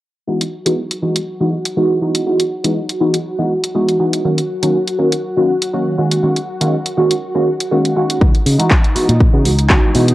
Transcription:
0.28 E3 G#3 B3 D#4 F#4 F#5
0.41 closed hi-hat
0.66 E3 G#3 B3 D#4 F#4, closed hi-hat
0.91 closed hi-hat
1.02 E3 G#3 B3 D#4 F#4
1.16 closed hi-hat
1.40 E3 G#3 B3 D#4 F#4
1.65 closed hi-hat
1.76 E3 G#3 B3 D#4 F#4
2.01 E3 G#3 B3 D#4 F#4
2.15 closed hi-hat
2.26 E3 G#3 B3 D#4 F#4
2.40 closed hi-hat
2.64 E3 G#3 B3 D#4 F#4, closed hi-hat
2.89 closed hi-hat
3.00 E3 G#3 B3 D#4 F#4
3.14 closed hi-hat
3.38 E3 G#3 B3 D#4 F#4
3.64 closed hi-hat
3.75 E3 G#3 B3 D#4 F#4
3.88 closed hi-hat
3.99 E3 G#3 B3 D#4 F#4
4.13 closed hi-hat
4.24 D#3 F#3 A#3 C#4 F#4
4.38 closed hi-hat
4.62 D#3 F#3 A#3 C#4 F#4, closed hi-hat
4.88 closed hi-hat
4.98 D#3 F#3 A#3 C#4 F#4
5.12 closed hi-hat
5.37 D#3 F#3 A#3 C#4 F#4
5.62 closed hi-hat
5.73 D#3 F#3 A#3 C#4 F#4
5.98 D#3 G#3 A#3 C#4 F#4
6.11 closed hi-hat
6.23 D#3 G#3 A#3 C#4 F#4
6.36 closed hi-hat
6.61 D#3 G#3 A#3 C#4 F#4, closed hi-hat
6.86 closed hi-hat
6.97 D#3 G#3 A#3 C#4 F#4
7.11 closed hi-hat
7.35 D#3 G#3 A#3 C#4 F#4
7.60 closed hi-hat
7.71 D#3 G#3 A#3 C#4 F#4
7.85 closed hi-hat
7.96 D#3 G#3 A#3 C#4 F#4
8.10 closed hi-hat
8.21 C#2 E3 G#3 B3 D#4 F#4 D#5, kick
8.35 closed hi-hat
8.46 C#3, open hi-hat
8.58 E3 G#3 B3 D#4 F#4, closed hi-hat
8.71 kick, clap
8.84 closed hi-hat
8.95 E3 G#3 B3 D#4 F#4, muted fingered electric bass stroke, open hi-hat
9.09 A#2, closed hi-hat
9.21 kick
9.33 C#3 E3 G#3 B3 D#4 F#4
9.45 C#2, open hi-hat
9.59 closed hi-hat
9.70 E3 G#3 B3 D#4 F#4, kick, clap
9.94 B2 E3 G#3 B3 D#4 F#4, open hi-hat
10.08 closed hi-hat

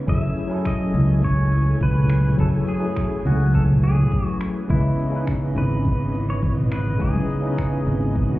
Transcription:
Already playing: B4
0.06 F#1 E3 F#3 A3 C#4 E4 G#4 A4 E5 G#5, kick, cabasa
0.37 cabasa
0.48 F#3 C#4 E4, cabasa
0.53 G#4 A4
0.65 D#5, finger snap, kick, cabasa
0.94 C#2, low conga, cabasa
1.09 cabasa
1.23 C#5, kick, cabasa
1.52 cabasa
1.67 cabasa
1.81 C#2 B4, kick, cabasa
1.95 mid tom
2.10 finger snap, cabasa
2.24 mid tom, cabasa
2.37 F#1 F#3 C#4 E4 G#4 A4, kick, cabasa
2.67 G#4, cabasa
2.79 F#3 C#4 E4, cabasa
2.84 A3 G#4
2.96 finger snap, kick, cabasa
3.25 C#2 F#4, low conga, cabasa
3.40 cabasa
3.54 A4, kick, cabasa
3.69 mid tom
3.83 G#4, cabasa
3.97 mid tom, high conga, cabasa
4.12 kick, cabasa
4.26 F#4
4.41 finger snap, cabasa
4.56 cabasa
4.68 C#2 C#3 G#3 B3 C#4 E4 B4 D#5, kick, cabasa
4.99 cabasa
5.10 C#3 C#4 D#4, cabasa
5.15 E4 B4
5.27 finger snap, kick, cabasa
5.55 G#1 B4, low conga, cabasa
5.71 cabasa
5.85 kick, cabasa
6.14 cabasa
6.29 C#5, cabasa
6.43 G#1 C#5, kick, cabasa
6.57 mid tom
6.72 B4, finger snap, cabasa
6.86 mid tom, cabasa
6.98 C#2 C#3 C#4 D#4 E4 G#4 B4, kick, cabasa
7.15 high conga
7.30 cabasa
7.40 C#3 C#4 D#4, cabasa
7.45 E4 B4
7.58 finger snap, kick, cabasa
7.87 G#1, low conga, cabasa
8.02 cabasa
8.15 kick, swell, cabasa
8.30 mid tom

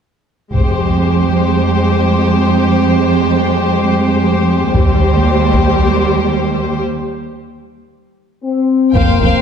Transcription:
0.54 F1 F2 G#3 G4 C5, taiko
4.74 D#2 G3 G4 C5, taiko
5.54 taiko
8.43 C4
8.95 F1 F2 A#3 C5 F5 G5, taiko, impact
9.21 F1 F2 C5 F5 G5

